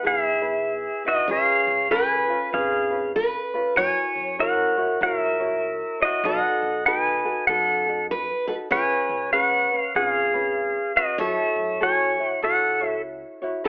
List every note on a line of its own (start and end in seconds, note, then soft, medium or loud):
0.00 0.41 E4 medium
0.00 0.42 G#4 medium
0.00 1.25 B4 medium
0.04 0.85 B1 medium
0.04 1.02 G#4 medium
0.04 0.40 B4 medium
0.04 0.24 F5 medium
0.24 1.09 E5 medium
0.41 1.05 E4 soft
0.41 1.05 B4 medium
1.05 1.28 D#4 soft
1.05 1.29 E4 soft
1.05 1.29 F#4 medium
1.05 1.28 B4 medium
1.05 1.31 D#5 medium
1.28 1.42 C#2 loud
1.28 1.90 C#4 medium
1.28 1.90 F4 medium
1.28 1.90 G#4 medium
1.28 1.88 G#4 medium
1.28 1.90 B4 medium
1.28 1.86 C#5 medium
1.32 1.94 F5 medium
1.67 2.23 C#2 medium
1.90 2.29 C#4 medium
1.90 2.28 F4 medium
1.90 2.29 G#4 medium
1.90 3.15 B4 medium
1.90 2.49 B4 medium
1.90 2.27 B4 medium
1.90 2.55 G#5 medium
2.29 2.52 C#4 soft
2.29 2.53 F4 medium
2.29 2.53 B4 medium
2.53 3.34 G#1 medium
2.53 2.91 C#4 medium
2.53 2.91 F4 medium
2.53 2.91 G#4 medium
2.53 3.11 G#4 medium
2.53 2.89 B4 medium
2.53 3.11 F5 medium
2.91 3.56 C#4 soft
2.91 3.53 F4 soft
2.91 3.53 B4 medium
3.16 3.77 B4 medium
3.54 3.76 C#4 soft
3.54 3.77 F4 medium
3.54 3.77 B4 medium
3.76 3.89 F#2 loud
3.76 4.38 E4 medium
3.76 4.39 F#4 medium
3.76 4.38 A#4 medium
3.76 4.39 C#5 medium
3.76 6.25 C#5 loud
3.76 4.36 C#5 medium
3.76 4.41 G#5 loud
4.16 4.71 F#2 medium
4.39 4.77 E4 medium
4.39 4.77 F#4 medium
4.39 4.77 A#4 medium
4.39 4.98 A#4 medium
4.39 4.76 C#5 medium
4.39 5.03 F#5 medium
4.77 5.00 E4 soft
4.77 5.01 F#4 medium
4.77 5.00 C#5 medium
5.01 5.81 C#2 medium
5.01 5.39 E4 medium
5.01 5.40 F#4 medium
5.01 5.39 A#4 medium
5.01 5.38 C#5 medium
5.01 5.20 F5 loud
5.06 5.99 A#4 medium
5.20 6.05 E5 loud
5.40 6.01 E4 soft
5.40 6.01 F#4 soft
5.40 5.99 C#5 medium
6.00 6.25 E4 soft
6.00 6.24 F#4 soft
6.00 6.24 C#5 medium
6.00 6.26 D#5 medium
6.05 6.25 F#4 medium
6.24 6.36 B1 loud
6.24 6.85 D#4 medium
6.24 6.86 F#4 medium
6.24 6.86 A4 medium
6.24 6.83 A4 medium
6.24 6.85 B4 medium
6.24 8.11 D#5 loud
6.24 6.86 F#5 medium
6.62 7.18 B1 medium
6.85 7.24 D#4 medium
6.85 7.24 F#4 medium
6.85 7.23 A4 medium
6.85 7.24 B4 medium
6.85 7.45 B4 medium
6.85 7.47 G#5 medium
7.25 7.48 D#4 soft
7.25 7.48 F#4 soft
7.25 7.48 A4 medium
7.47 8.28 F#2 medium
7.47 7.87 D#4 medium
7.47 7.87 F#4 medium
7.47 8.06 A4 medium
7.47 7.86 A4 medium
7.47 7.86 B4 medium
7.47 8.05 F#5 medium
7.87 8.48 D#4 soft
7.87 8.48 F#4 soft
7.87 8.47 A4 medium
8.11 8.46 B4 loud
8.47 8.71 D#4 soft
8.47 8.71 F#4 soft
8.47 8.71 A4 medium
8.47 8.54 B4 medium
8.71 8.84 C#2 medium
8.71 9.33 C#4 medium
8.71 9.32 F4 medium
8.71 9.31 G#4 medium
8.71 9.33 B4 medium
8.71 9.30 B4 medium
8.71 11.17 C#5 loud
8.71 9.32 G#5 loud
9.09 9.65 C#2 medium
9.32 9.72 C#4 medium
9.32 9.71 G#4 medium
9.32 9.91 B4 medium
9.32 9.70 B4 medium
9.32 9.79 F#5 medium
9.71 9.95 C#4 soft
9.71 9.95 B4 medium
9.79 9.96 F5 medium
9.95 10.76 G#1 medium
9.95 10.34 C#4 medium
9.95 10.34 F4 medium
9.95 10.34 G#4 medium
9.95 10.92 G#4 medium
9.95 10.33 B4 medium
9.95 10.08 F#5 medium
10.08 10.99 F5 medium
10.34 10.97 C#4 soft
10.34 10.96 F4 soft
10.34 10.94 B4 soft
10.96 11.20 C#4 soft
10.96 11.19 F#4 medium
10.96 11.19 B4 medium
10.96 11.21 D#5 medium
11.18 11.31 F#2 loud
11.18 11.80 E4 medium
11.18 11.81 F#4 medium
11.18 11.80 A4 medium
11.18 11.78 A4 medium
11.18 13.68 C#5 loud
11.18 11.81 C#5 medium
11.18 11.83 E5 medium
11.56 12.12 F#2 medium
11.80 12.19 E4 medium
11.80 12.18 F#4 medium
11.80 12.19 A4 medium
11.80 12.17 C#5 medium
11.80 12.40 C#5 medium
11.80 12.31 G#5 medium
12.19 12.42 E4 soft
12.19 12.43 F#4 soft
12.19 12.42 C#5 soft
12.31 12.44 F#5 medium
12.43 13.23 C#2 medium
12.43 12.81 E4 medium
12.43 12.80 F#4 medium
12.43 12.81 A4 medium
12.43 13.01 A4 medium
12.43 12.79 C#5 medium
12.43 12.88 F#5 medium
12.81 13.43 E4 soft
12.81 13.42 F#4 soft
12.81 13.41 C#5 medium
12.88 13.01 E5 medium
13.42 13.66 E4 soft
13.42 13.65 F#4 medium
13.42 13.64 C#5 medium
13.64 13.68 B4 medium